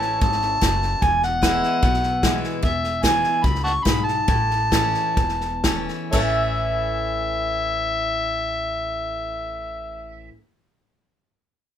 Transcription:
Already playing: A1 A2 E3 A3 C#4 E4 C#5 E5 A5
0.01 snare
0.21 G#1 G#2 A5, kick, snare
0.32 snare
0.41 snare
0.61 F#1 F#2, kick, snare, hi-hat pedal
0.82 snare
1.02 E1 E2 G#5, kick, snare
1.22 F#5, snare
1.42 E3 G#3 B3 E4 B4 E5, kick, snare, hi-hat pedal
1.63 snare
1.82 B1 B2, kick, snare
1.93 snare
2.03 snare
2.23 E3 G#3 B3 E4, kick, snare, hi-hat pedal
2.44 snare
2.63 E1 E2 E5, kick, snare
2.84 snare
3.03 E3 G#3 B3 E4 G#5, kick, snare, hi-hat pedal
3.24 snare
3.44 C#2 F#2 B5, kick, snare
3.55 snare
3.64 F#5 A5 C#6, snare
3.83 B1 G#2 B5, kick, snare, hi-hat pedal
4.05 A5, snare
4.28 A1 A2, kick, snare
4.50 snare
4.71 E3 A3 C#4 E4, kick, snare, hi-hat pedal
4.94 snare
5.16 E1 E2, kick, snare
5.29 snare
5.40 snare
5.64 E3 A3 C#4 E4, kick, snare, hi-hat pedal
5.88 snare
6.12 A1 A2 E3 A3 C#4 E4 A4 C#5 E5, kick, splash

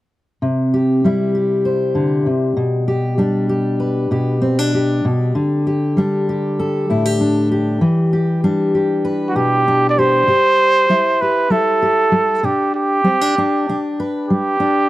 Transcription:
0.42 C3
0.74 G4
1.04 G3 E4
1.35 G4
1.65 C5
1.95 D3
2.26 C3
2.57 B2
2.88 G4
3.18 G3 D4
3.49 G4
3.80 B4
4.11 B2 G4
4.42 C4
4.59 D4
4.74 G4
5.05 B2
5.35 D3
5.67 G4
5.97 G3 D4
6.29 G4
6.59 A4
6.90 A2 E4
7.05 G4
7.21 D4
7.52 G4
7.81 E3
8.13 G4
8.44 G3 D4
8.75 G4
9.05 B4
9.29 F#4
9.35 B2 G4
9.68 D4
9.89 D5
9.99 G4 C5
10.27 C3 G4
10.90 G3 E4
11.21 G4 B4
11.50 G3 E4 A4
11.82 G4
12.12 G3
12.43 B2 D4 G4
12.75 G4
13.04 G3 C4
13.21 D4
13.38 D4
13.69 B2 D4
14.00 B4
14.28 G3 G4
14.60 D4

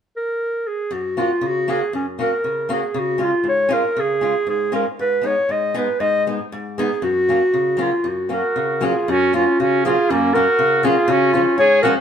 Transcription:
0.16 A#4
0.67 G#4
0.91 F#2 F#4
1.17 A#3 C#4 F4 F#4
1.41 C#3
1.47 F#4
1.68 A#3 C#4 F#4 G#4
1.93 F#2 C#4
2.19 A#3 C#4 F#4 A#4
2.44 C#3
2.69 A#3 C#4 F#4 G#4
2.94 C#3
2.99 F#4
3.18 G#3 C#4 F4
3.24 F4
3.44 G#2
3.48 C#5
3.69 G#3 C#4 F4
3.73 A#4
3.97 C#3 G#4
4.21 G#3 C#4 F4
4.47 G#2 G#4
4.72 G#3 C#4 F4 A#4
4.99 G#2 B4
5.21 G#3 B3 D#4
5.26 C#5
5.49 G#2 D#5
5.74 G#3 B3 D#4 B4
6.00 G#2 D#5
6.27 G#3 B3 D#4
6.52 G#2
6.77 G#3 B3 D#4 G#4
7.02 F#2 F#4
7.29 F#3 A#3 C#4
7.54 C#3
7.77 F#3 A#3 C#4
7.82 F4
8.04 F#2
8.08 F#4
8.29 F#3 A#3 C#4 A#4
8.35 F#4
8.56 C#3
8.81 F#3 A#3 C#4 G#4
8.86 F4
9.08 F#2 C#4 F#4
9.33 F#3 A#3 C#4 F4
9.59 C#3 C#4 F#4
9.85 F#3 A#3 C#4 F4 G#4
10.10 F#2 A#3 C#4
10.34 F#3 A#3 C#4 F#4 A#4
10.59 C#3
10.83 F#3 A#3 C#4 F4 G#4
11.08 C#3 C#4 F#4
11.33 F3 G#3 C#4 F4
11.58 G#2 G#4 C#5
11.82 F3 G#3 C#4 F#4 A#4

